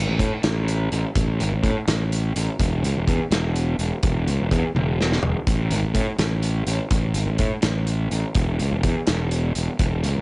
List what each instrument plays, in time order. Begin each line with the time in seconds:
0.07 fingered electric bass A1
0.19 fingered electric bass A2, kick, closed hi-hat
0.43 fingered electric bass A1, snare, closed hi-hat
0.68 closed hi-hat
0.92 fingered electric bass A1, closed hi-hat
1.15 fingered electric bass A1, kick, closed hi-hat
1.40 fingered electric bass G#1, closed hi-hat
1.52 fingered electric bass A1
1.63 fingered electric bass A2, kick, closed hi-hat
1.88 fingered electric bass A1, snare, closed hi-hat
2.12 closed hi-hat
2.36 fingered electric bass A1, closed hi-hat
2.59 fingered electric bass E1, kick, closed hi-hat
2.83 fingered electric bass C#2, closed hi-hat
2.95 fingered electric bass E1
3.08 fingered electric bass E2, kick, closed hi-hat
3.31 fingered electric bass E1, snare, closed hi-hat
3.56 closed hi-hat
3.79 fingered electric bass E1, closed hi-hat
4.03 fingered electric bass E1, kick, closed hi-hat
4.27 fingered electric bass C#2, closed hi-hat
4.40 fingered electric bass E1
4.51 fingered electric bass E2, kick, closed hi-hat
4.75 fingered electric bass E1, high tom
5.01 snare
5.12 snare
5.23 fingered electric bass E1, floor tom
5.47 fingered electric bass A1, kick, closed hi-hat
5.71 fingered electric bass G#1, closed hi-hat
5.83 fingered electric bass A1
5.94 fingered electric bass A2, kick, closed hi-hat
6.18 fingered electric bass A1, snare, closed hi-hat
6.42 closed hi-hat
6.67 fingered electric bass A1, closed hi-hat
6.91 fingered electric bass A1, kick, closed hi-hat
7.14 fingered electric bass G#1, closed hi-hat
7.26 fingered electric bass A1
7.38 fingered electric bass A2, kick, closed hi-hat
7.62 fingered electric bass A1, snare, closed hi-hat
7.87 closed hi-hat
8.11 fingered electric bass A1, closed hi-hat
8.35 fingered electric bass E1, kick, closed hi-hat
8.59 fingered electric bass C#2, closed hi-hat
8.72 fingered electric bass E1
8.83 fingered electric bass E2, kick, closed hi-hat
9.07 fingered electric bass E1, snare, closed hi-hat
9.31 closed hi-hat
9.55 fingered electric bass E1, closed hi-hat
9.79 fingered electric bass E1, kick, closed hi-hat
10.03 fingered electric bass C#2, closed hi-hat
10.16 fingered electric bass E1